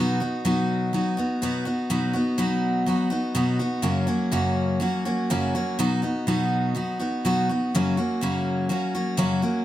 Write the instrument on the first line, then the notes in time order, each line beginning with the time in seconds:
steel-string acoustic guitar
Already playing: B2 F#3 B3
0.00 D#4 F#4
0.20 B3 D#4 F#4
0.45 B2 F#3 B3 D#4 F#4
0.93 F#3 B3 D#4 F#4
1.17 B3 D#4 F#4
1.42 B2 F#3 B3 D#4 F#4
1.65 B3 D#4 F#4
1.90 B2 F#3 B3 D#4 F#4
2.13 B3 D#4 F#4
2.38 B2 F#3 B3 D#4 F#4
2.86 F#3 B3 D#4 F#4
3.10 B3 D#4 F#4
3.35 B2 F#3 B3 D#4 F#4
3.59 B3 D#4 F#4
3.82 F#2 C#3 F#3 A#3 C#4 F#4
4.07 F#3 A#3 C#4 F#4
4.32 F#2 C#3 F#3 A#3 C#4 F#4
4.80 F#3 A#3 C#4 F#4
5.05 F#3 A#3 C#4 F#4
5.30 F#2 C#3 F#3 A#3 C#4 F#4
5.55 F#3 A#3 C#4 F#4
5.79 B2 F#3 B3 D#4 F#4
6.02 B3 D#4 F#4
6.27 B2 F#3 B3 D#4 F#4
6.75 F#3 B3 D#4 F#4
6.99 B3 D#4 F#4
7.25 B2 F#3 B3 D#4 F#4
7.49 B3 D#4 F#4
7.75 F#2 C#3 F#3 A#3 C#4 F#4
7.97 F#3 A#3 C#4 F#4
8.21 F#2 C#3 F#3 A#3 C#4 F#4
8.69 F#3 A#3 C#4 F#4
8.95 F#3 A#3 C#4 F#4
9.17 F#2 C#3 F#3 A#3 C#4 F#4
9.42 F#3 A#3 C#4 F#4